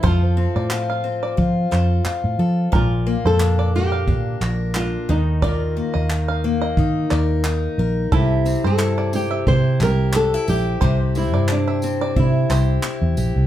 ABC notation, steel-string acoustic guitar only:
X:1
M:4/4
L:1/16
Q:"Swing 16ths" 1/4=89
K:Cmix
V:1 name="Steel-string acoustic guitar"
[F,CA]2 C2 F2 C2 F2 A2 F2 A2 | B,,2 B,2 D2 B,2 D2 B2 D2 _E,2 | [_E,B]2 B,2 _E2 B,2 E2 B2 E2 B2 | [C,G]2 C2 E2 C2 E2 G2 D E G2 |
[C,G]2 C2 E2 C2 E2 G2 E2 G2 |]